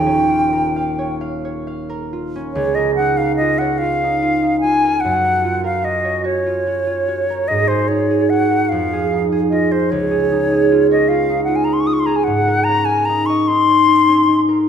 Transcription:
Already playing: D#1 D#2 F4 C#5 F5 G5
0.06 C#4
0.29 F4
0.53 A#4
0.76 F5
0.99 C#5
1.21 F5
1.45 C#5
1.67 F5
1.89 A#4
2.13 F4
2.36 C#4
2.53 C#2 C#5
2.75 A#4 D#5
2.95 D#4 F#5
3.17 A#4 F5
3.36 D#5
3.41 F4
3.58 C#5 F#5
3.78 F5
3.82 F4
4.04 D#4
4.22 F4
4.43 D#4
4.61 F4 G#5
4.84 A#4
5.00 F#5
5.05 F#2
5.24 A#4
5.44 F4
5.64 A#4 F5
5.84 F#4 D#5
6.04 C#5
6.24 F#4 C#5
6.46 F4
6.66 F#4
6.87 F4
7.08 F#4
7.30 A#4
7.48 G#2 D#5
7.68 G#4 C5
7.88 D#4 C#5
8.10 G#4
8.30 F#4 F#5
8.51 A#4
8.69 F2 F5
8.93 G#4
9.13 D#4
9.32 G#4
9.50 F4 D#5
9.71 C5
9.90 C#2 C#5
10.11 G#4
10.32 D#4
10.51 G#4
10.72 F4
10.91 C#5 D#5
11.08 F4 F5
11.30 D#4
11.44 F4 F#5
11.56 G#5
11.64 D#4 A#5
11.73 C6
11.80 C#6
11.87 F4 D#6
11.93 C#6
12.00 C6
12.06 G#4 A#5
12.16 G#5
12.24 G#2 F#5
12.48 A#4
12.64 A#5
12.68 C#4
12.85 A#4 G#5
13.05 D#4 A#5
13.26 D#5 C#6
13.48 D#4 C6
13.68 C#4
13.88 D#4
14.09 C#4
14.28 D#4
14.49 A#4

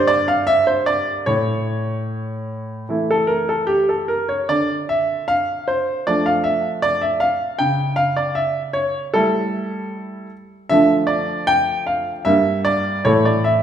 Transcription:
Already playing: G2 D3 A#3 G4
0.07 D5
0.28 F5
0.47 E5
0.67 C5
0.86 D5
1.26 A2 C#5
2.89 E3 A3 E4
3.11 A4
3.27 A#4
3.49 A4
3.67 G4
3.89 A4
4.08 A#4
4.29 C#5
4.49 D3 D5
4.89 E5
5.28 F5
5.68 C5
6.07 F3 A3 D4 D5
6.26 F5
6.44 E5
6.82 D5
7.02 E5
7.20 F5
7.59 C#3 G5
7.96 F5
8.17 D5
8.35 E5
8.73 C#5
9.14 G3 A3 E4 A4
10.69 D3 F3 A3 D4 E5
11.07 D5
11.47 G5
11.87 F5
12.25 G2 G3 A#3 D4 E5
12.65 D5
13.05 A2 E3 A3 A4 C#5
13.25 D5
13.44 E5

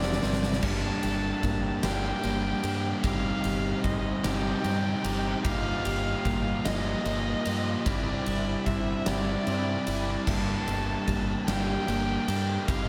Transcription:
Already playing: F1 C3 G3 C4 D4 E4 D5
0.02 snare
0.12 snare
0.22 G1 C3 G3 C4, snare
0.33 snare
0.43 snare
0.53 snare
0.62 G1 G2 G3 A#3 D4 G4 A5, kick, crash
1.03 G1 A4, ride
1.43 G1 A#3, kick, ride
1.83 G1 G3 A#3 D4 G4 G5, snare, ride
2.23 G1 G3 A#3 D4 G4, ride
2.63 G2 A#3 D4 G4 A4, ride
3.02 G1 G3 C4 D#4 G4 F5, kick, ride
3.44 G1 G4, ride
3.83 G1 C4 D#5, kick, ride
4.23 G1 G3 C4 D#4 G4 G5, snare, ride
4.64 G2 G3 C4 D#4 G4, ride
5.04 G1 C4 D#4 G4, ride
5.43 G1 G2 G3 A#3 F4 G4 D#5 F5, kick, ride
5.85 G1 G4, ride
6.25 G1 A#3, kick, ride
6.65 G1 F3 G3 A#3 F4 G4 D#5, snare, ride
7.05 G1 A#3 F4 G4 D#5, ride
7.45 G2 F4 G4 D#5, ride
7.85 G1 G3 C4 D4 E4 G4 D5, kick, ride
8.26 G1 E4, ride
8.65 G1 C4 E5, kick, ride
9.05 G1 G3 C4 E4 G4 D5, snare, ride
9.46 G2 G3 C4 E4 G4, ride
9.87 G1 C4 E4 G4, ride
10.26 G1 G2 G3 A#3 D4 G4 A5, kick, crash
10.67 G1 A4, ride
11.08 G1 A#3, kick, ride
11.47 G1 G3 A#3 D4 G4 G5, snare, ride
11.87 G1 G3 A#3 D4 G4, ride
12.28 G2 A#3 D4 G4 A4, ride
12.68 G1 G3 C4 D#4 G4 F5, kick, ride

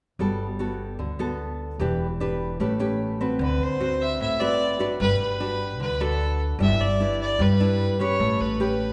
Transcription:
0.19 G1 G3 B3 F#4 A4
0.59 B3 F#4 A4
0.99 D2 D3
1.19 B3 F#4 A4
1.79 E1 E3 D4 G4 B4
2.20 D4 G4 B4
2.60 A1 A3 C#4 G4 B4
2.79 C#4 G4 B4
3.21 C4 F#4 B4
3.39 D2 D3
3.43 B4
3.60 D2 C5
3.80 C4 F#4 B4
4.02 E5
4.20 A1 A2 E5
4.40 C4 F#4 B4 D5
4.79 D4 F#4 B4
5.00 G1 G3 B4
5.20 G1 B4
5.40 D4 F#4 B4
5.79 D2 D3 B4
6.00 D4 F#4 A4 B4
6.59 G1 G3 D4 E4 B4 E5
6.79 G1 D5
7.00 D4 E4 B4
7.21 D5
7.39 G2 G3 B4
7.60 D4 E4 B4
8.00 C#4 G4 B4 C#5
8.20 A1 A3
8.40 A1 B4
8.60 C#4 G4 B4

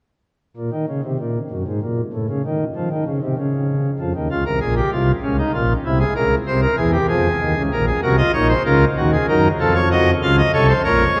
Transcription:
0.57 A#2
0.72 D#3
0.88 C#3
1.04 C3
1.19 A#2
1.50 F#2
1.67 G#2
1.82 A#2
2.13 A2
2.29 C#3
2.46 D#3
2.76 F3
2.91 D#3
3.06 C#3
3.22 C3
3.37 C#3
3.99 F2 F3
4.15 D#2 D#3
4.31 C#2 C#3 F4
4.46 C2 C3 A#4
4.61 A#1 A#2 G#4
4.77 G4
4.92 C2 C3 F4
5.23 C#2 C#3 C#4
5.38 D#4
5.54 A#1 A#2 F4
5.85 C2 C3 E4
6.00 G#4
6.16 C#2 C#3 A#4
6.47 C2 C3 C5
6.62 A#4
6.77 E2 E3 G#4
6.93 G4
7.09 F2 F3 G#4
7.40 D#2 D#3
7.57 C#2 C#3
7.72 A#1 A#2 A#4
7.87 G#4
8.02 C2 C3 F#4 A#4
8.18 F4 D#5
8.34 A#1 A#2 D#4 C#5
8.49 C5
8.65 C#2 C#3 F4 A#4
8.97 D#2 D#3 F#4
9.12 G#4
9.29 F#2 F#3 D#4 A#4
9.60 F2 F3 F4 A4
9.75 C#5
9.91 F#4 D#5
10.22 C#2 C#3 F4 F5
10.38 D#5
10.53 C2 C3 A4 C#5
10.69 C5
10.84 A#1 A#2 A#4 C#5
11.16 C#2 C#3 G#4

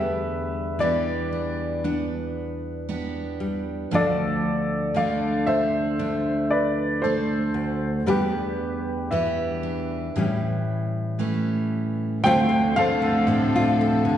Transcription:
Already playing: E2 D3 G3 B3 D4 G4 B4 E5
0.79 E3 B3 D4 G4 B4 D5
1.33 D4
1.84 B3 D4
2.89 B3 D4 G4
3.40 G3
3.91 D2 F3 A3 D4 F4 D5
3.96 A4
4.94 D3 A3 D4 A4 D5 F5
5.47 D4 C5 E5
5.99 A3 D4
6.51 B4 D5
7.02 A3 D4 A4 C5
7.54 D2
8.06 E2 G3 B3 D4 G4 B4
9.11 E3 B3 D4 G4 B4 E5
9.63 D4
10.16 A2 E3 G3 C#4 G4
11.19 E3 A3 C#4 G4
12.24 D2 C3 D3 F3 A3 C4 D4 F4 A4 C5 G5
12.49 D3
12.76 A3 C4 F4 A4 C5 F5
13.02 D3
13.27 A2 C4
13.56 F4
13.81 C4
14.05 D3

